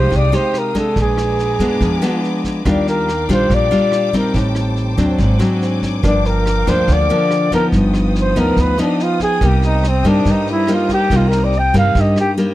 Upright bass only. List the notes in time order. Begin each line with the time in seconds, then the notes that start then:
Already playing: C2
0.11 C2
0.96 A#1
1.59 F2
1.80 F2
2.65 D#2
3.29 A#1
3.50 A#1
4.34 A1
4.97 D#2
5.18 G#1
6.03 G1
6.67 D2
6.88 D2
7.72 G1
8.35 D2
8.57 D2
9.41 C2
10.04 G2
10.25 G2
11.10 C2
11.74 G2
11.95 G2